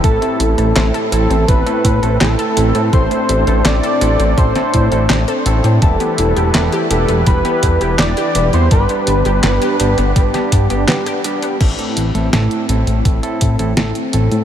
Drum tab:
CC |----------------|----------------|----------------|----------------|
HH |xxxxxxxxxxxxxxxx|xxxxxxxxxxxxxxxx|xxxxxxxxxxxxxxxx|xxxxxxxxxxxxxxxx|
CP |----x-------x---|----x-------x---|----x-------x---|----x-------x---|
SD |----o-------o---|----o----o--o---|----o-------o---|----o----o--o---|
BD |o-------o-o-----|o-------o-o-----|o-------o-o-----|o-------o-o-----|

CC |x---------------|
HH |xxxxxxxxxxxxxxxx|
CP |----------------|
SD |----o-------o---|
BD |o-------o-o-----|